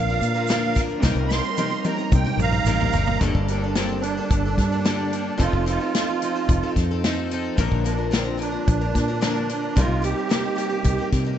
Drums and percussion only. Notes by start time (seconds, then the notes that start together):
0.22 closed hi-hat, shaker
0.35 shaker
0.47 snare, closed hi-hat, shaker
0.75 kick, snare, closed hi-hat, shaker
0.89 shaker
1.03 kick, snare, shaker
1.16 shaker
1.30 snare, shaker
1.45 shaker
1.57 high tom, shaker
1.71 shaker
1.84 high tom, shaker
1.98 shaker
2.12 kick, mid tom, shaker
2.27 mid tom, shaker
2.39 mid tom, shaker
2.52 mid tom, shaker
2.66 mid tom, shaker
2.80 floor tom, shaker
2.93 floor tom, shaker
3.07 floor tom
3.20 kick, closed hi-hat
3.35 kick
3.48 closed hi-hat
3.75 snare, closed hi-hat
4.03 closed hi-hat
4.30 kick, closed hi-hat
4.58 kick, snare, closed hi-hat
4.85 snare, closed hi-hat
5.13 closed hi-hat
5.40 kick, closed hi-hat
5.53 kick
5.67 closed hi-hat
5.95 snare, closed hi-hat
6.22 closed hi-hat
6.49 kick, closed hi-hat
6.76 kick, snare, closed hi-hat
7.04 snare, closed hi-hat
7.31 closed hi-hat
7.58 kick, closed hi-hat
7.72 kick
7.86 closed hi-hat
8.13 snare, closed hi-hat
8.42 closed hi-hat
8.68 kick, closed hi-hat
8.95 kick, snare, closed hi-hat
9.22 snare, closed hi-hat
9.49 closed hi-hat
9.76 kick, closed hi-hat
10.04 closed hi-hat
10.31 snare, closed hi-hat
10.58 closed hi-hat
10.84 kick, closed hi-hat
11.12 kick, snare, closed hi-hat